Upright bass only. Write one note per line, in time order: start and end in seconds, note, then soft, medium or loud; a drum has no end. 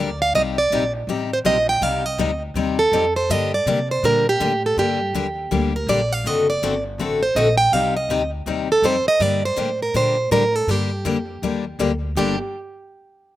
0.00 0.33 D2 medium
0.34 0.70 C2 medium
0.71 1.07 A#1 medium
1.07 1.43 A1 medium
1.44 1.80 A#1 medium
1.81 2.17 C2 medium
2.18 2.54 D2 medium
2.54 2.91 D#2 medium
2.92 3.28 F2 medium
3.29 3.65 G2 medium
3.66 4.02 C3 medium
4.03 4.39 A#2 medium
4.40 4.76 A2 medium
4.77 5.13 G2 medium
5.13 5.50 D#2 medium
5.51 5.86 D2 medium
5.87 6.23 A#1 medium
6.24 6.60 F#1 medium
6.62 6.98 G1 medium
6.98 7.34 A1 medium
7.35 7.71 A#1 loud
7.72 8.08 C2 medium
8.09 8.45 D2 medium
8.46 8.82 D#2 medium
8.82 9.04 F2 loud
9.05 muted upright bass stroke soft
9.20 9.56 G2 medium
9.57 9.93 A2 medium
9.94 10.30 A#2 medium
10.31 10.66 A2 loud
10.67 11.03 G2 medium
11.05 11.41 F2 medium
11.42 11.78 D#2 medium
11.79 12.15 D2 loud
12.15 12.37 G1 medium